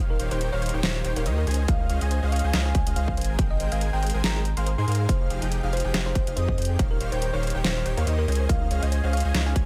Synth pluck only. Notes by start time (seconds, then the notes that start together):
0.10 A#4
0.31 C5
0.52 C#5
0.83 C5
1.16 A#4
1.38 A#4
1.68 F5
2.32 F5
2.66 G#5
2.96 F5
3.50 D#5
3.72 F5
3.93 G5
4.24 A#5
4.57 C6
4.78 C6
5.09 C5
5.73 C5
6.06 C5
6.36 C5
6.91 A#4
7.12 C5
7.33 C#5
7.64 C5
7.97 A#4
8.18 A#4
8.49 F5
9.13 F5
9.46 G#5